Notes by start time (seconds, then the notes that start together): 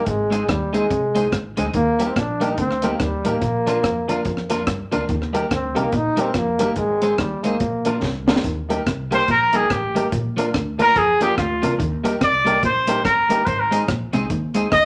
0.06 G#1 G#2 G#3, kick, closed hi-hat
0.30 G#3 C4 D#4 G#4 C5, closed hi-hat
0.47 D#2 D#3 G3, muted clean electric guitar stroke, kick, cross-stick, closed hi-hat
0.73 G#3 C4 D#4 G#4 C5, closed hi-hat
0.90 C2 C3, kick, closed hi-hat
1.15 G#3 C4 D#4 G#4 C5, closed hi-hat
1.32 G#1 G#2, kick, cross-stick, closed hi-hat
1.57 D2 D3 G#3 C4 D#4 G#4 C5, closed hi-hat
1.74 D#2 D#3 A#3, kick, closed hi-hat
1.99 G3 A#3 D#4 G4 A#4, closed hi-hat
2.09 C4
2.16 A#1 A#2 D4, muted clean electric guitar stroke, kick, cross-stick, closed hi-hat
2.40 G3 A#3 D#4 G4 A#4, closed hi-hat
2.52 D#4
2.58 D2 D3 C4, kick, closed hi-hat
2.71 cross-stick
2.82 G3 A#3 D#4 G4 A#4, closed hi-hat
2.94 A#3
3.00 D#2 D#3 G3, kick, cross-stick, closed hi-hat
3.24 A1 A2 G3 A#3 D#4 G4 A#4, closed hi-hat
3.29 A#3
3.42 A#1 A#2, kick, closed hi-hat
3.66 F3 A#3 D4 F4 A#4, closed hi-hat
3.83 F2 F3, muted clean electric guitar stroke, kick, cross-stick, closed hi-hat
4.08 F3 A#3 D4 F4 A#4, closed hi-hat
4.25 F2 F3, kick, closed hi-hat
4.37 cross-stick
4.49 F3 A#3 D4 F4 A#4, closed hi-hat
4.67 G2 G3, kick, cross-stick, closed hi-hat
4.91 D2 D3 F3 A#3 D4 F4 A#4, closed hi-hat
5.09 D#2 D#3, kick, closed hi-hat
5.22 cross-stick
5.33 G3 A#3 D#4 G4 A#4, closed hi-hat
5.50 D2 D3 C4, muted clean electric guitar stroke, kick, cross-stick, closed hi-hat
5.75 C2 C3 G3 A#3 D#4 G4 A#4, closed hi-hat
5.79 A#3
5.92 A#1 A#2 D#4, kick, closed hi-hat
6.17 G3 A#3 D#4 G4 A#4, closed hi-hat
6.21 C4
6.34 F2 F3 A#3, kick, cross-stick, closed hi-hat
6.58 G1 G2 G3 A#3 D#4 G4 A#4, closed hi-hat
6.76 G#1 G#2 G#3, kick, closed hi-hat
7.01 G#3 C4 D#4 G#4 C5, closed hi-hat
7.18 D#2 D#3 G3, muted clean electric guitar stroke, kick, cross-stick, closed hi-hat
7.43 G#3 A#3 C4 D#4 G#4 C5, closed hi-hat
7.60 A#1 A#2, kick, closed hi-hat
7.85 F3 A#3 D4 F4 A#4, closed hi-hat
8.02 C2 C3, kick, snare
8.27 D2 D3 F3 A#3 D4 F4 A#4, snare
8.36 snare
8.44 D#2 D#3, kick, closed hi-hat
8.69 G3 A#3 D#4 G4 A#4, closed hi-hat
8.86 C2 C3, kick, cross-stick, closed hi-hat
9.11 G3 A#3 D#4 G4 A#4 C5, closed hi-hat
9.28 A#1 A#2 A#4, kick, closed hi-hat
9.53 G3 A#3 D#4 G4 G#4 A#4, closed hi-hat
9.70 A1 A2 G4 A#4, kick, cross-stick, closed hi-hat
9.95 G3 A#3 D#4 G4 A#4, closed hi-hat
10.12 A#1 A#2, kick, closed hi-hat
10.37 F3 A#3 D4 F4 A#4, closed hi-hat
10.54 D2 D3, kick, cross-stick, closed hi-hat
10.78 F3 A#3 D4 F4 A#4, closed hi-hat
10.96 F2 F3 G#4, kick, closed hi-hat
11.20 F3 A#3 D4 F4 G4 A#4, closed hi-hat
11.37 D2 D3 F4 A#4, kick, cross-stick, closed hi-hat
11.62 C2 C3 F3 A#3 D4 F4 A#4, closed hi-hat
11.79 D#2 D#3, kick, closed hi-hat
12.03 G3 A#3 D#4 G4 A#4, closed hi-hat
12.21 C2 C3 D5, kick, cross-stick, closed hi-hat
12.45 G3 A#3 D#4 G4 A#4, closed hi-hat
12.63 A#1 A#2 C5, kick, closed hi-hat
12.87 G3 A#3 D#4 G4 A#4, closed hi-hat
13.05 G1 G2 G4 A#4, kick, cross-stick, closed hi-hat
13.29 G3 A#3 D#4 G4 A#4, closed hi-hat
13.46 G#1 G#2 C5, kick, closed hi-hat
13.60 A#4
13.71 G#3 C4 D#4 G#4 C5, closed hi-hat
13.88 A#1 A#2, kick, cross-stick, closed hi-hat
14.13 C2 C3 G#3 C4 D#4 G#4 C5, closed hi-hat
14.30 D#2 D#3, kick, closed hi-hat
14.54 G#3 C4 D#4 G#4 C5, closed hi-hat
14.71 D2 D3 G#4 C5 D#5, kick, cross-stick, closed hi-hat